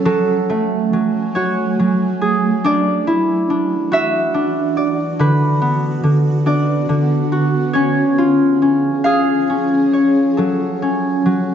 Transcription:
Already playing: C#4 F#4
0.05 F#3 A3 A4 G#5
0.50 A3
0.93 F#3
1.35 F#4 C#5
1.79 F#3
2.21 G#4
2.64 E3 D4 F#4 D5
3.07 E4
3.50 D4
3.92 F#4 E5
4.34 D4
4.77 D5
5.18 D3 B3 B4
5.62 B3
6.04 D3
6.46 D4 D5
6.89 D3
7.32 F#4
7.73 F3 C#4 G#4 C#5
8.18 F4
8.62 C#4
9.04 G#4 F5
9.50 C#4
9.93 C#5
10.37 F#3 A4
10.82 C#4
11.26 F#3

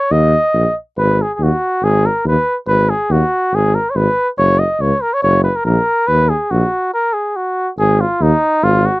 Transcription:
Already playing: C#5
0.10 D#2 D#5
0.53 A#1
0.97 G#1 B4
1.22 G#4
1.34 G#4
1.39 D#2 F#4
1.82 G#1 G#4
2.06 A#4
2.25 D#2 B4
2.67 G#1 B4
2.90 G#4
3.09 D#2 F#4
3.53 G#1 G#4
3.75 A#4
3.90 C#5
3.95 G#1 B4
4.38 F#1 C#5
4.59 D#5
4.80 C#2 C#5
5.02 A#4
5.13 C#5
5.23 F#1 C#5
5.44 B4
5.56 A#4
5.65 A#1 A#4
6.07 D#2 B4
6.29 G#4
6.51 A#1 F#4
6.94 A#4
7.13 G#4
7.36 F#4
7.78 G#1 G#4
8.01 F4
8.21 D#2 D#4
8.63 G#1 F4
8.86 F#4

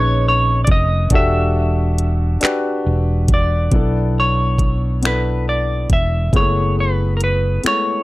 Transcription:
Already playing: A#1 C#4 D#4 G#4 B4 C#5
0.28 C#5
0.65 F1 D5, kick, closed hi-hat
0.72 D#5
1.10 E1 D4 F#4 G4 A4, kick, closed hi-hat
1.15 E5
1.98 closed hi-hat
2.41 D4 F#4 G4 B4, muted fingered electric bass stroke, clap, closed hi-hat
2.87 E1
3.28 kick, closed hi-hat
3.34 D5
3.72 B1 B3 D4 E4 A4, kick, closed hi-hat
4.20 C#5
4.58 kick, closed hi-hat
5.02 B3 D4 E4 A4, finger snap, closed hi-hat
5.07 B4
5.49 D5
5.90 E1 E5, kick, closed hi-hat
6.33 F#1 G#3 B3 E4 G#4 C#5, kick, closed hi-hat
6.39 A3
6.80 B4
7.17 A#4, closed hi-hat
7.24 B4
7.63 G#3 B3 E4 G#4, finger snap, muted fingered electric bass stroke, closed hi-hat
7.67 A3 C#5

